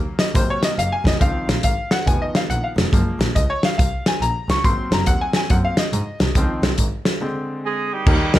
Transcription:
Already playing: C#3 F#3 A#3
0.19 D#5, snare, closed hi-hat
0.34 G#1 C3 F#3 A#3 C5, kick, closed hi-hat
0.50 C#5
0.63 D#5, snare, closed hi-hat
0.79 F#1 F5, closed hi-hat
0.92 G#5
1.05 F1 D#5, kick, snare, closed hi-hat
1.20 C#2 D#3 F3 C4 F5, kick, closed hi-hat
1.48 A#1, snare, closed hi-hat
1.63 G#1 F5, kick, closed hi-hat
1.91 F#5, snare, closed hi-hat
2.06 F1 D#3 F3 B3 G#5, kick, closed hi-hat
2.22 D#5
2.35 F5, snare, closed hi-hat
2.50 A#1 F#5, closed hi-hat
2.64 F5
2.77 F1, snare, closed hi-hat
2.92 F#1 F3 G#3 A#3, kick, closed hi-hat
3.20 A#1, snare, closed hi-hat
3.35 C#2 D#5, kick, closed hi-hat
3.50 C#5
3.63 F5, snare, closed hi-hat
3.78 C2 F5, kick, closed hi-hat
4.06 G#5, snare, closed hi-hat
4.21 A#1 A#5, closed hi-hat
4.49 C#2 C#6, snare, closed hi-hat
4.64 G#1 F#3 A#3 C4 C6, kick, closed hi-hat
4.92 F#1 A#5, snare, closed hi-hat
5.06 D#2 F#5, kick, closed hi-hat
5.21 G#5
5.33 G#5, snare, closed hi-hat
5.50 F#2 F#3 A#3 C4 F#5, kick, closed hi-hat
5.65 F5
5.77 D#5, snare, closed hi-hat
5.93 G#2, closed hi-hat
6.20 C2, snare, closed hi-hat
6.35 C#2 D#3 F3 C4, kick, closed hi-hat
6.63 C2, snare, closed hi-hat
6.78 G#1, kick, closed hi-hat
7.05 snare, closed hi-hat
7.21 D3 G#3 C4
7.65 G#3 G#4
7.93 G3 A#3 D#4 G4
8.06 D#2 D#3, kick, crash
8.34 D2 D#4 G4 A#4, snare, ride

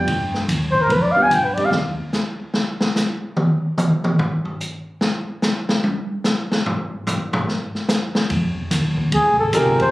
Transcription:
Already playing: G5
0.07 G2, kick, ride
0.34 snare
0.48 D#2, kick, hi-hat pedal, ride
0.71 C5, kick
0.82 A#4
0.89 F2 B4, kick, ride
1.02 D5
1.12 F5
1.16 G3 B3 D4 F4 B4, muted upright bass stroke
1.23 G#5
1.30 G2 G5, kick, hi-hat pedal, ride
1.44 B4
1.54 G3 C4 D4 D#4 G4 D5, muted upright bass stroke, ride
1.65 F5
1.71 D#2, snare
2.13 snare, hi-hat pedal
2.54 snare
2.81 snare
2.96 snare, hi-hat pedal
3.37 mid tom
3.78 hi-hat pedal, mid tom
4.04 mid tom
4.19 floor tom
4.45 floor tom
4.60 hi-hat pedal
5.01 snare
5.42 snare, hi-hat pedal
5.69 snare
5.84 high tom
6.24 snare, hi-hat pedal
6.52 snare
6.66 floor tom
7.07 floor tom, hi-hat pedal
7.33 floor tom
7.48 snare
7.75 snare
7.89 snare, hi-hat pedal
8.15 snare
8.30 F2, kick, ride
8.57 muted upright bass stroke
8.71 D#2, kick, snare, hi-hat pedal, ride
8.97 kick
9.12 D2 G#4, kick, ride
9.26 C2
9.39 G#1 A4
9.53 C2 C4 D#4 F4 G4 G#4 A#4, kick, hi-hat pedal, ride
9.67 G#1
9.80 F1 C5, ride

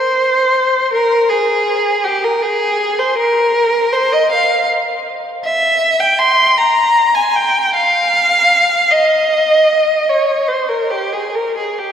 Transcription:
Already playing: C5
0.93 A#4
1.29 G#4
2.04 G4
2.24 A#4
2.42 G#4
2.99 C5
3.17 A#4
3.93 C5
4.12 D#5
4.31 F5
5.45 E5
6.00 G5
6.19 C6
6.58 A#5
7.15 G#5
7.36 G5
7.74 F5
8.90 D#5
10.09 C#5
10.48 C5
10.69 A#4
10.91 G4
11.12 G#4
11.35 A#4
11.57 G#4
11.78 G4

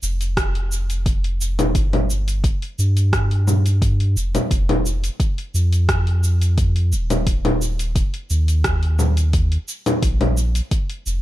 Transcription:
0.03 F1, cabasa
0.21 open hi-hat, cabasa
0.37 kick, cross-stick, open hi-hat, cabasa
0.55 open hi-hat
0.72 cabasa
0.90 open hi-hat, cabasa
1.06 kick, open hi-hat, cabasa
1.24 open hi-hat
1.41 cabasa
1.59 open hi-hat, low conga, cabasa
1.75 G1, kick, open hi-hat, cabasa
1.93 open hi-hat, low conga
2.10 cabasa
2.28 open hi-hat, cabasa
2.44 kick, open hi-hat, cabasa
2.62 open hi-hat
2.79 G2, cabasa
2.97 open hi-hat, cabasa
3.13 kick, cross-stick, open hi-hat, cabasa
3.31 open hi-hat
3.47 low conga, cabasa
3.66 open hi-hat, cabasa
3.82 kick, open hi-hat, cabasa
4.00 open hi-hat
4.17 F1, cabasa
4.35 open hi-hat, low conga, cabasa
4.51 F1, kick, open hi-hat, cabasa
4.69 open hi-hat, low conga
4.86 cabasa
5.04 open hi-hat, cabasa
5.20 kick, open hi-hat, cabasa
5.38 open hi-hat
5.54 F2, cabasa
5.73 open hi-hat, cabasa
5.89 kick, cross-stick, open hi-hat, cabasa
6.07 open hi-hat
6.24 cabasa
6.42 open hi-hat, cabasa
6.58 kick, open hi-hat, cabasa
6.76 open hi-hat
6.92 D#1, cabasa
7.10 open hi-hat, low conga, cabasa
7.27 kick, open hi-hat, cabasa
7.45 open hi-hat, low conga
7.62 cabasa
7.79 open hi-hat, cabasa
7.96 kick, open hi-hat, cabasa
8.14 open hi-hat
8.30 D#2, cabasa
8.48 open hi-hat, cabasa
8.64 kick, cross-stick, open hi-hat, cabasa
8.83 open hi-hat
8.99 low conga, cabasa
9.17 open hi-hat, cabasa
9.33 kick, open hi-hat, cabasa
9.52 open hi-hat
9.68 cabasa
9.86 open hi-hat, low conga, cabasa
10.02 A#1, kick, open hi-hat, cabasa
10.21 open hi-hat, low conga
10.37 cabasa
10.55 open hi-hat, cabasa
10.71 kick, open hi-hat, cabasa
10.90 open hi-hat
11.06 F1, cabasa

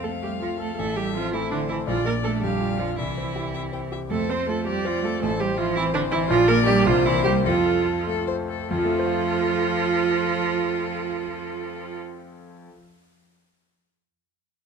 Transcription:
Already playing: F2 A4 F5
0.03 A3 C4 A4
0.22 G3 A3 G4
0.40 F3 F4
0.60 A3 A4
0.77 A1 A3 A4 E5
0.96 G3 G4 A4
1.15 F3 C4 F4
1.33 E3 A3 E4 C5
1.51 D3 D4 E4
1.69 E3 E4 A4
1.87 A#1 F3 F4 D5
2.05 A#3 A#4 D5
2.23 A3 D4 A4
2.41 F2 G3 G4 F5
2.61 F4
2.78 F3 F4 D5
2.96 C2 E3 E4 E5
3.18 C5
3.36 G4
3.54 C4 E5
3.73 C5 G5
3.92 G4 E5
4.10 F2 A3 A4 C5
4.29 C4 C5
4.48 A3 F4 A4
4.66 G3 C4 G4 D5
4.85 F3 F4 C5
5.03 A3 F4 A4
5.21 A1 A3 A4 C5
5.40 G3 G4 C5
5.57 F3 E4 F4
5.76 E3 C4 E4
5.94 D3 D4 C5
6.11 E3 E4
6.29 A#1 F3 F4 D5
6.48 A#3 A#4
6.66 G3 D4 G4 D5
6.86 C2 F3 F4 C5
7.05 E3 A#3 E4
7.23 G3 G4 C5
7.45 F2 F3 F4 A4
7.66 A4
7.85 F4
8.07 A3 A4
8.27 C5
8.49 A4
8.69 F2 F3 F4 A4
8.78 F3
8.85 A3
8.92 F4
8.99 C5
9.06 F5

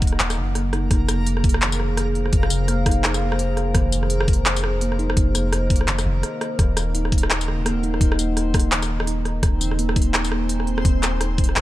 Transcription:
Already playing: D#1 A#3 D#4 A#4 D#5 F#5 A#5
0.02 kick, closed hi-hat
0.07 closed hi-hat
0.13 cross-stick
0.20 D#1, clap, closed hi-hat
0.30 cross-stick, tambourine
0.38 F#1 C#3
0.55 A#3, cross-stick, closed hi-hat
0.73 D#4, cross-stick, closed hi-hat
0.84 F1
0.91 F1 D#4 G#4, kick, cross-stick, closed hi-hat
1.08 A#3, cross-stick, closed hi-hat, tambourine
1.26 C5, closed hi-hat
1.37 cross-stick
1.44 kick, closed hi-hat
1.49 closed hi-hat
1.54 cross-stick
1.62 D#3, clap, closed hi-hat
1.72 F5, tambourine
1.80 cross-stick
1.97 cross-stick, closed hi-hat
2.15 closed hi-hat
2.26 cross-stick
2.33 F1, kick, closed hi-hat
2.43 cross-stick
2.50 C3, closed hi-hat, tambourine
2.68 A#3, cross-stick, closed hi-hat
2.86 D#4, kick, cross-stick, closed hi-hat
2.91 closed hi-hat
3.04 D#4, clap, closed hi-hat
3.14 cross-stick, tambourine
3.22 A#3
3.32 cross-stick
3.39 closed hi-hat
3.57 cross-stick, closed hi-hat
3.75 F1 D#3, kick, cross-stick, closed hi-hat
3.92 closed hi-hat, tambourine
4.03 cross-stick
4.10 closed hi-hat
4.20 D#5, cross-stick
4.28 kick, closed hi-hat
4.33 closed hi-hat
4.46 cross-stick, clap, closed hi-hat
4.56 tambourine
4.64 C3, cross-stick
4.81 A#3, closed hi-hat
4.92 cross-stick
4.99 D#4, closed hi-hat
5.10 cross-stick
5.17 F1 D#4, kick, closed hi-hat
5.35 A#3, cross-stick, closed hi-hat, tambourine
5.53 cross-stick, closed hi-hat
5.70 kick, closed hi-hat
5.76 closed hi-hat
5.81 cross-stick
5.88 F1 D#3, clap, closed hi-hat
5.99 cross-stick, tambourine
6.06 F1
6.23 cross-stick, closed hi-hat
6.41 cross-stick, closed hi-hat
6.59 D#1 D#3 C4 D#4 C5, kick, cross-stick, closed hi-hat
6.77 cross-stick, closed hi-hat, tambourine
6.95 D#4, closed hi-hat
7.05 F#5, cross-stick
7.12 kick, closed hi-hat
7.18 closed hi-hat
7.23 cross-stick
7.30 clap, closed hi-hat
7.41 tambourine
7.48 C#3 A#5, cross-stick
7.65 A#3, cross-stick, closed hi-hat
7.83 D#4, closed hi-hat
7.94 cross-stick
8.01 D#1 D#4, kick, closed hi-hat
8.12 cross-stick
8.19 A#3, closed hi-hat, tambourine
8.37 cross-stick, closed hi-hat
8.54 kick, cross-stick, closed hi-hat
8.59 closed hi-hat
8.72 D#3, clap, closed hi-hat
8.82 cross-stick, tambourine
9.00 cross-stick
9.07 D#4, closed hi-hat
9.25 cross-stick, closed hi-hat
9.43 D#1, kick, cross-stick, closed hi-hat
9.61 C#3, closed hi-hat, tambourine
9.71 cross-stick
9.77 A#3 G#5, closed hi-hat
9.89 cross-stick
9.96 D#4, kick, closed hi-hat
10.02 closed hi-hat
10.14 cross-stick, clap, closed hi-hat
10.24 tambourine
10.32 A#3, cross-stick
10.49 closed hi-hat
10.60 cross-stick
10.67 closed hi-hat
10.78 cross-stick
10.85 D#1 D#3, kick, closed hi-hat
11.03 cross-stick, clap, closed hi-hat, tambourine
11.21 D#4, cross-stick, closed hi-hat
11.38 kick, closed hi-hat
11.44 closed hi-hat
11.49 cross-stick
11.56 D#1, clap, closed hi-hat

